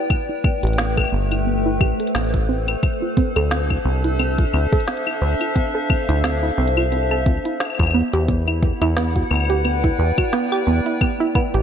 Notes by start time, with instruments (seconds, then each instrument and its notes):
Already playing: ambient pad E4 B4 D5 F#5 G5
0.10 ambient pad A3, synth arpeggio sound B3, kick, closed hi-hat, claves
0.23 ambient pad A4
0.29 synth arpeggio sound E4
0.44 synth arpeggio sound B3, kick, claves
0.63 acid bass A1, synth arpeggio sound G4, closed hi-hat
0.67 closed hi-hat
0.73 closed hi-hat
0.78 synth arpeggio sound B3, snare, closed hi-hat
0.85 closed hi-hat
0.90 closed hi-hat
0.97 synth arpeggio sound A4, kick, claves
1.00 claves
1.05 claves
1.07 claves
1.12 acid bass G1, synth arpeggio sound B3
1.32 synth arpeggio sound E4, ambient pad C5, closed hi-hat, claves
1.47 synth arpeggio sound B3
1.66 synth arpeggio sound E4
1.81 acid bass A1, synth arpeggio sound G4, kick, claves
2.00 synth arpeggio sound A4, closed hi-hat
2.07 closed hi-hat
2.15 acid bass A1, synth arpeggio sound B3, snare, closed hi-hat, claves
2.24 closed hi-hat
2.34 synth arpeggio sound B4, kick
2.49 synth arpeggio sound C4
2.68 synth arpeggio sound B4, closed hi-hat, claves
2.83 ambient pad D4, synth arpeggio sound C5, kick, closed hi-hat, claves
3.02 synth arpeggio sound F4
3.17 synth arpeggio sound C4, kick
3.36 acid bass D2, synth arpeggio sound A4, closed hi-hat, claves
3.42 ambient pad E5
3.51 synth arpeggio sound C4, snare, closed hi-hat
3.70 synth arpeggio sound E4, kick, claves
3.85 acid bass C2, synth arpeggio sound C4
4.04 synth arpeggio sound E4, closed hi-hat
4.19 synth arpeggio sound C4, closed hi-hat, claves
4.38 synth arpeggio sound F4, kick
4.53 acid bass D2, synth arpeggio sound C4, claves
4.73 synth arpeggio sound A4, kick, closed hi-hat
4.80 closed hi-hat
4.88 synth arpeggio sound C4, snare, closed hi-hat
4.97 closed hi-hat
5.07 synth arpeggio sound E4, claves
5.14 ambient pad F5
5.22 acid bass D2, synth arpeggio sound C5
5.41 synth arpeggio sound F4, closed hi-hat, claves
5.56 synth arpeggio sound C4, kick, closed hi-hat
5.75 synth arpeggio sound A4
5.90 synth arpeggio sound C4, kick, claves
6.09 acid bass D2, synth arpeggio sound E4, closed hi-hat
6.24 synth arpeggio sound C4, snare, claves
6.43 synth arpeggio sound E4
6.58 acid bass C2, synth arpeggio sound C4
6.68 closed hi-hat
6.77 synth arpeggio sound F4, claves
6.92 synth arpeggio sound C4, closed hi-hat
7.11 synth arpeggio sound A4, claves
7.26 acid bass D2, synth arpeggio sound C4, kick
7.45 synth arpeggio sound E4, closed hi-hat
7.60 synth arpeggio sound C5, snare, closed hi-hat, claves
7.65 claves
7.70 claves
7.75 claves
7.79 acid bass E2, synth arpeggio sound F4, kick, claves
7.83 claves
7.87 claves
7.91 synth arpeggio sound B3, claves
7.94 ambient pad E4, claves
8.13 acid bass E2, synth arpeggio sound G4, closed hi-hat
8.28 synth arpeggio sound B3, kick, closed hi-hat
8.38 ambient pad F#5
8.48 synth arpeggio sound E4, claves
8.63 synth arpeggio sound B3, kick
8.73 ambient pad B4
8.82 acid bass E2, synth arpeggio sound E4, closed hi-hat, claves
8.97 synth arpeggio sound B3, snare, closed hi-hat
9.16 synth arpeggio sound F#4, kick
9.31 acid bass D2, synth arpeggio sound B3, ambient pad D5 G5, claves
9.35 claves
9.40 claves
9.45 claves
9.50 synth arpeggio sound G4, closed hi-hat
9.65 synth arpeggio sound B3, closed hi-hat, claves
9.84 synth arpeggio sound E4, kick
9.99 acid bass E2, synth arpeggio sound B4
10.18 synth arpeggio sound F#4, kick, closed hi-hat, claves
10.33 synth arpeggio sound B3, snare, closed hi-hat
10.52 synth arpeggio sound G4, claves
10.67 acid bass E2, synth arpeggio sound B3
10.86 synth arpeggio sound E4, closed hi-hat
11.01 ambient pad A3, synth arpeggio sound B3, kick, closed hi-hat, claves
11.20 synth arpeggio sound E4
11.35 synth arpeggio sound B3, kick, claves
11.54 acid bass A1, synth arpeggio sound G4, closed hi-hat